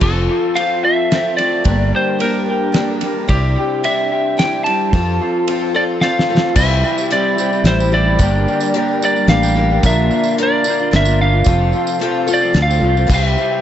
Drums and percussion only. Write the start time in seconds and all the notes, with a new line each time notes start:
0.01 kick, crash
0.56 ride
1.12 snare, ride
1.38 ride
1.65 kick, ride
2.20 ride
2.74 snare, ride
3.01 ride
3.29 kick, ride
3.84 ride
4.39 snare, ride
4.66 ride
4.93 kick, ride
5.48 ride
6.01 snare
6.19 snare
6.37 snare
6.55 kick, crash, tambourine
6.84 tambourine
6.98 tambourine
7.10 closed hi-hat
7.38 tambourine
7.53 tambourine
7.65 snare, closed hi-hat
7.80 tambourine
8.19 kick, closed hi-hat, tambourine
8.48 tambourine
8.60 tambourine
8.74 closed hi-hat
9.02 tambourine
9.16 tambourine
9.28 snare, closed hi-hat
9.43 tambourine
9.83 kick, closed hi-hat, tambourine
10.11 tambourine
10.24 tambourine
10.38 closed hi-hat
10.64 tambourine
10.80 tambourine
10.93 snare, closed hi-hat
11.05 tambourine
11.44 kick, closed hi-hat, tambourine
11.73 tambourine
11.87 tambourine
12.01 closed hi-hat
12.28 tambourine
12.42 tambourine
12.54 snare, closed hi-hat
12.71 tambourine
12.97 tambourine
13.10 kick, crash, tambourine
13.38 tambourine